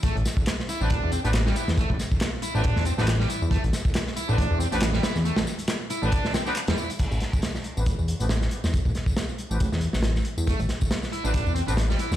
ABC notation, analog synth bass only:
X:1
M:4/4
L:1/16
Q:"Swing 16ths" 1/4=138
K:Am
V:1 name="Analog synth bass" clef=bass
A,,, A,,, z4 z A,,, A,,, E,, z A,,,3 z E,, | z A,,, z4 z A,,, A,,, E,, z A,,,3 z E,, | z A,,, z4 z A,,, A,,, E,, z A,,,3 z E,, | z A,,, z4 z A,,, z4 z E,, z2 |
A,,, A,,, z4 z A,,, A,,, E,, z A,,,3 z E,, | z A,,, z4 z A,,, A,,, E,, z A,,,3 z E,, | z A,,, z4 z A,,, A,,, E,, z A,,,3 z E,, |]